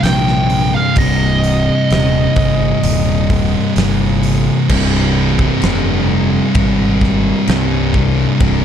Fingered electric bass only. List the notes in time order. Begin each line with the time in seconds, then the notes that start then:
0.03 A#1
0.96 C1
1.91 D#1
2.36 G1
2.83 D#1
3.76 G1
4.69 C1
5.63 F1
6.55 G#1
7.48 C2
8.40 C1